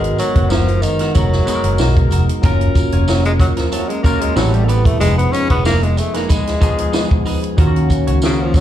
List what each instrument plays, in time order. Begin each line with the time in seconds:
Already playing: fingered electric bass G#1, tenor saxophone G#3, tine electric piano G#3 B3 D#4 F#4 A#4, french horn section G#3 B3 G#4 A#4
0.04 muted clean electric guitar stroke, closed hi-hat
0.18 tenor saxophone F#3, muted clean electric guitar stroke, closed hi-hat, tambourine
0.36 fingered electric bass F#1, clean electric guitar B3 F#4 B4, kick, closed hi-hat
0.50 tenor saxophone F3, clean electric guitar B3 F#4 A#4, snare, tambourine
0.68 closed hi-hat
0.82 tenor saxophone D#3, muted clean electric guitar stroke, closed hi-hat, tambourine
0.99 clean electric guitar B3 F#4 A#4, snare, closed hi-hat
1.14 fingered electric bass F1, tenor saxophone F#3, clean electric guitar B3 F#4 A#4, kick, closed hi-hat, tambourine
1.32 muted clean electric guitar stroke, snare
1.45 tine electric piano G#3 B3 D#4 F#4 G#4, clean electric guitar B3 F#4 B4, muted fingered electric bass stroke, closed hi-hat, tambourine
1.55 tine electric piano A#4
1.64 fingered electric bass F#1, muted clean electric guitar stroke, closed hi-hat
1.78 fingered electric bass B1, clean electric guitar B3 F#4 A#4, snare, tambourine
1.96 muted clean electric guitar stroke, kick, closed hi-hat
2.11 fingered electric bass F1, clean electric guitar B3 F#4 A#4, closed hi-hat, tambourine
2.29 muted clean electric guitar stroke, closed hi-hat
2.42 fingered electric bass F#1, tine electric piano F#3 A#3 C#4 F4 A#4, french horn section F#3 C#4 F4, clean electric guitar C#4 F4 A#4, kick, closed hi-hat, tambourine
2.61 muted clean electric guitar stroke, closed hi-hat
2.75 muted clean electric guitar stroke, kick, closed hi-hat, tambourine
2.92 fingered electric bass F1, clean electric guitar C#4 F4 C#5, closed hi-hat
3.08 tenor saxophone F#3, clean electric guitar C#4 F4 A#4, snare, tambourine
3.25 tenor saxophone G#3, closed hi-hat
3.40 tenor saxophone F#3, muted clean electric guitar stroke, kick, closed hi-hat, tambourine
3.57 tenor saxophone F3, clean electric guitar C#4 F4 A#4, snare, closed hi-hat
3.71 tenor saxophone F#3, clean electric guitar C#4 F4 A#4, closed hi-hat, tambourine
3.89 tenor saxophone G#3, muted clean electric guitar stroke, closed hi-hat
4.03 tine electric piano F#3 A#3 C#4 F4 A#4, tenor saxophone A#3, clean electric guitar C#4 F4 C#5, kick, closed hi-hat, tambourine
4.21 tenor saxophone G#3, muted clean electric guitar stroke, closed hi-hat
4.35 fingered electric bass A1, french horn section C3 A3 G4 B4, tenor saxophone F#3, tine electric piano G3 B3 C4 E4 A4, clean electric guitar C4 G4 B4, snare, tambourine
4.54 tenor saxophone G3, muted clean electric guitar stroke, closed hi-hat
4.64 tenor saxophone A#3 B3, clean electric guitar C4
4.69 clean electric guitar G4 B4, closed hi-hat, tambourine
4.85 tenor saxophone A3, kick, closed hi-hat
4.99 fingered electric bass F1, tine electric piano F3 G#3 B3 D#4 G#4, french horn section F3 B3 D#4 G#4, tenor saxophone G#3, clean electric guitar D#4 G#4 B4, closed hi-hat, tambourine
5.18 tenor saxophone B3, muted clean electric guitar stroke, closed hi-hat
5.32 tenor saxophone C#4, muted clean electric guitar stroke, closed hi-hat, tambourine
5.50 fingered electric bass F1, tenor saxophone B3, clean electric guitar D#4 G#4 C#5, kick, closed hi-hat
5.64 tenor saxophone A#3, clean electric guitar D#4 G#4 B4, snare, tambourine
5.83 tenor saxophone G#3, closed hi-hat
5.97 tenor saxophone A3, muted clean electric guitar stroke, closed hi-hat, tambourine
6.14 tenor saxophone A#3, clean electric guitar D#4 G#4 B4, snare, closed hi-hat
6.28 tenor saxophone G#3, clean electric guitar D#4 G#4 B4, kick, closed hi-hat, tambourine
6.46 muted clean electric guitar stroke, snare, closed hi-hat
6.60 tine electric piano F3 G#3 B3 D#4 G#4, clean electric guitar D#4 G#4 C#5, kick, closed hi-hat, tambourine
6.78 muted clean electric guitar stroke, closed hi-hat
6.93 clean electric guitar D#4 G#4 B4, snare, tambourine
7.11 muted clean electric guitar stroke, kick
7.26 clean electric guitar D#4 G#4 B4, open hi-hat, tambourine
7.43 muted clean electric guitar stroke, closed hi-hat
7.56 fingered electric bass D#2, tine electric piano D#3 F#3 A#3 C#4, french horn section D#3 A#3 C#4 F#4, clean electric guitar C#4 F#4 A#4, kick, closed hi-hat, tambourine
7.61 tine electric piano F4
7.67 tine electric piano F#4
7.75 muted clean electric guitar stroke, closed hi-hat
7.89 muted clean electric guitar stroke, kick, closed hi-hat, tambourine
8.07 fingered electric bass C#2, clean electric guitar C#4 F#4 C#5, closed hi-hat
8.22 tenor saxophone C#3, clean electric guitar C#4 F#4 A#4, snare, tambourine
8.42 tenor saxophone F3
8.54 tenor saxophone F#3, muted clean electric guitar stroke, kick, closed hi-hat, tambourine